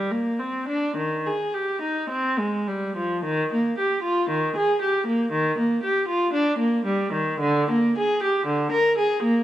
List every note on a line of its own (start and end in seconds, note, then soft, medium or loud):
0.00 0.11 G3 soft
0.10 0.41 A#3 soft
0.39 0.69 C4 soft
0.68 0.98 D4 soft
0.96 1.26 D#3 soft
1.26 1.55 G#4 soft
1.54 1.83 G4 soft
1.81 2.09 D#4 soft
2.09 2.37 C4 soft
2.38 2.67 G#3 soft
2.67 2.95 G3 soft
2.96 3.22 F3 soft
3.24 3.49 D#3 medium
3.53 3.77 A#3 soft
3.78 4.03 G4 soft
4.03 4.28 F4 soft
4.29 4.54 D#3 medium
4.56 4.80 G#4 medium
4.81 5.06 G4 soft
5.07 5.31 A#3 soft
5.31 5.56 D#3 medium
5.58 5.82 A#3 soft
5.83 6.07 G4 soft
6.08 6.32 F4 medium
6.33 6.58 D4 medium
6.58 6.85 A#3 soft
6.85 7.12 G3 soft
7.12 7.40 D#3 soft
7.40 7.68 D3 medium
7.70 7.96 A#3 medium
7.97 8.22 G#4 medium
8.23 8.47 G4 medium
8.46 8.71 D3 medium
8.72 8.96 A#4 medium
8.97 9.21 G#4 medium
9.22 9.44 A#3 medium